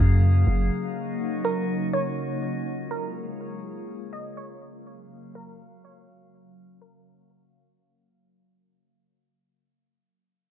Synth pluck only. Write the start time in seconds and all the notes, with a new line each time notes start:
Already playing: A#4
1.45 A#4
1.93 C#5
2.91 A#4
4.13 D#5
4.37 C#5
5.35 A#4
5.85 C#5
6.82 A#4